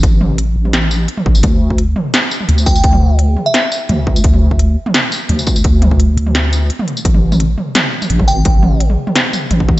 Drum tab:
HH |x---x---x---x---|x---x---x---x---|x---x---x---x---|x---x---x---x---|
TB |----------x----x|----------x--xxx|----------x----x|----------x--xxx|
SD |--------o-------|--------o-------|--------o-------|--------o-------|
T2 |--o----o-----o--|o-----o----o----|-o----o-----o---|-o-----o----o---|
BD |o-------------o-|o--o----------o-|o-------------o-|o--o----------o-|

HH |x-x-x-x-x-x-x-x-|x---x---x---x---|x---x---x---x---|
TB |----------x----x|---x-------x--x-|----------x-----|
SD |--------o-------|--------o-------|--------o-------|
T2 |--o----o-----o--|-o-o--o-o--o-o--|o-o--o-o--o-o---|
BD |o--o------------|o------------o--|o------------oo-|